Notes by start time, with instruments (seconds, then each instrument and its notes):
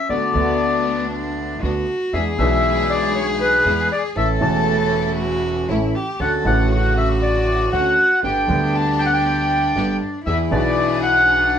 Already playing: cello C#4
0.09 upright bass D2, grand piano D2 D3 A3 B3 F#4, string section A3 B3 D4, cello B3, bandoneon D5
0.33 upright bass D2, grand piano D2 D3 A3 B3, string section A3 B3 D4
0.37 grand piano F#4
1.12 cello D4
1.62 grand piano D2 D3 A3 B3 F#4, upright bass D2, string section A3 B3 D4, cello F#4
2.13 upright bass E2, grand piano E2 E3 B3 D4 G#4, string section G#3 D4 E4, cello G#4, bandoneon E5
2.37 upright bass B1, grand piano B1 B2 E3 B3 D4, string section G#3 D4 E4, bandoneon E5
2.41 grand piano G#4
2.90 bandoneon D5
3.15 bandoneon C#5
3.41 bandoneon B4
3.65 upright bass E2, grand piano E2 E3 B3 D4 G#4, string section G#3 D4 E4
3.92 bandoneon D5
4.16 grand piano A1 A2 E3 A3 C#4 A4, upright bass A1, string section A3 C#4 E4, cello A4, bandoneon E5
4.39 grand piano E1 E2 E3 A3 C#4, upright bass E1, string section A3 C#4 E4, bandoneon A5
4.43 grand piano A4
5.17 cello F#4
5.69 upright bass A1, grand piano A1 A2 E3 A3 C#4 A4, string section A3 C#4 E4, cello E4
5.95 cello G4
6.19 grand piano D2 D3 A3 C#4 F#4, upright bass D2, string section C#4 D4 F#4, cello A4, bandoneon F#5
6.43 upright bass A1, grand piano A1 A2 C#3 D3 A3, string section C#3 F#4, bandoneon F#5
6.47 grand piano F#4
6.70 cello F#4
6.98 bandoneon E5
7.22 bandoneon D5
7.72 upright bass D2, grand piano D2 D3 A3 C#4 F#4, string section C#4 D4 F#4, bandoneon F#5
8.23 grand piano G1 G2 D3 G3 B3 G4, upright bass G1, string section B3 D4 G4, cello D4, bandoneon G5
8.47 upright bass D2, grand piano D2 D3 G3 B3, string section B3 D4 G4
8.51 grand piano G4
8.75 bandoneon A5
8.99 bandoneon G5
9.06 bandoneon F#5
9.13 bandoneon G5
9.75 upright bass G1, grand piano G1 G2 D3 G3 B3 G4, string section B3 D4 G4
10.26 upright bass E2, grand piano E2 E3 B3 D4 G#4, string section D4 E4 G#4, cello E4, bandoneon E5
10.50 upright bass B1, grand piano B1 B2 E3 B3 D4 G#4, string section D4 E4 G#4, bandoneon D5
11.02 bandoneon F#5
11.28 cello D4